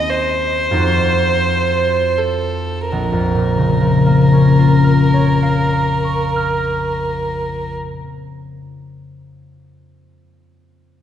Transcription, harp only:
0.00 0.79 D#2 soft
0.00 2.81 C4 soft
0.00 0.73 F#4 soft
0.71 2.98 F2 soft
0.71 2.98 D#4 soft
0.76 2.98 F#4 soft
2.92 7.77 A#1 soft
3.12 7.97 F2 soft
3.35 8.20 A#2 soft
3.57 8.42 C#3 soft
3.81 8.55 F3 soft
4.06 8.55 A#3 soft
4.32 8.56 C#4 soft
4.59 8.56 F4 soft
4.84 8.55 A#4 soft
5.14 8.55 C#5 soft
5.43 8.55 F5 soft
5.73 8.56 A#5 soft
6.04 8.56 C#6 soft
6.36 8.56 F6 soft

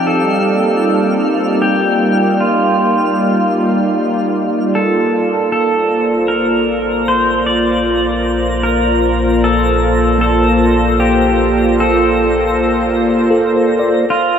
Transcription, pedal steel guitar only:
0.07 1.61 A4 medium
1.62 2.42 G4 medium
2.41 4.31 F4 medium
4.75 5.51 A4 medium
5.52 6.32 A4 medium
6.28 7.08 A#4 medium
7.08 7.46 C5 medium
7.46 8.67 D5 medium
8.63 9.18 A#4 medium
9.44 10.20 A4 medium
10.21 11.01 A4 medium
11.00 11.79 G4 medium
11.80 13.30 A4 medium
14.10 14.39 F4 medium

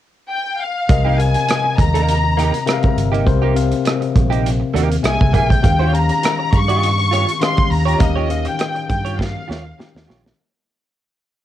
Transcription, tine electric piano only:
0.89 1.11 C3 medium
0.89 1.11 C4 medium
0.89 1.11 A#4 medium
0.89 1.11 D#5 medium
1.18 2.03 C3 medium
1.18 2.03 C4 soft
1.18 2.03 A#4 medium
1.18 2.03 F5 medium
2.66 3.10 C3 medium
2.66 3.09 C4 medium
2.66 3.10 A#4 medium
2.66 2.74 E5 medium
2.73 3.13 F5 medium
3.25 3.48 C3 medium
3.25 3.48 C4 medium
3.25 3.48 A#4 medium
3.25 3.48 C5 medium
3.55 4.40 C3 medium
3.55 4.40 C4 medium
3.55 4.40 A#4 medium
3.55 4.40 F5 medium
5.03 5.47 C3 medium
5.03 5.47 A#3 medium
5.03 5.47 G#4 medium
5.03 5.47 E5 medium
5.62 5.85 D#3 medium
5.62 5.85 C#4 medium
5.62 5.85 G4 medium
5.62 5.85 F5 medium
5.92 6.76 D#3 soft
5.92 6.77 C#4 soft
5.92 6.77 G4 soft
5.92 6.77 F5 medium
7.40 7.84 D#3 medium
7.40 7.84 C#4 medium
7.40 7.84 G4 medium
7.40 7.84 F5 medium
7.98 8.21 D#3 medium
7.98 8.21 C#4 medium
7.98 8.21 G4 medium
7.98 8.22 F5 medium
8.29 9.14 D#3 medium
8.29 9.14 C#4 medium
8.29 9.14 G4 soft
8.29 9.15 F5 medium
9.78 10.21 D#3 medium
9.78 10.21 C#4 medium
9.78 10.22 G4 medium
9.78 10.22 G5 medium

